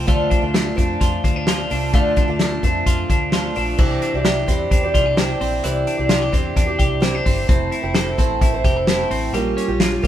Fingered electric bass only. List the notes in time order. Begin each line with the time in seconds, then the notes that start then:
0.08 D2
0.42 D2
0.78 F2
1.01 F2
1.24 D2
1.71 C2
1.94 D2
2.29 D2
2.63 F2
2.86 F2
3.09 D2
3.57 A#1
3.79 C2
4.14 C2
4.48 E2
4.71 E2
4.95 C2
5.41 A#1
5.64 C2
5.99 C2
6.33 E2
6.56 E2
6.80 C2
7.26 G1
7.49 F1
7.84 F1
8.18 A1
8.41 A1
8.64 F1
9.10 A1
9.33 A#1
9.68 A#1
10.04 C#2